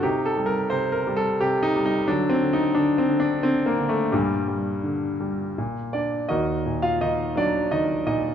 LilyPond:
<<
  \new Staff \with { instrumentName = "Grand piano" } { \time 3/4 \key g \minor \tempo 4 = 87 << { \tuplet 3/2 { g'8 a'8 bes'8 c''8 bes'8 a'8 g'8 ees'8 ees'8 } | \tuplet 3/2 { d'8 c'8 ees'8 d'8 c'8 d'8 c'8 bes8 a8 } | g2 r8 d''8 | \key ees \minor ees''8. f''16 ees''8 d''8 ees''8 ees''8 | } \\ { ees'4. r4. | fis4. r4. | bes,2 r4 | <ees' ges' bes'>8. f'16 ees'8 d'8 ees'8 ees'8 | } >> }
  \new Staff \with { instrumentName = "Grand piano" } { \clef bass \time 3/4 \key g \minor c8 g8 c8 g8 c8 g8 | d8 d8 d8 d8 d8 d8 | g,8 g8 d8 g8 bes,8 d'8 | \key ees \minor ees,8 bes,8 ees8 ges8 ees8 bes,8 | }
>>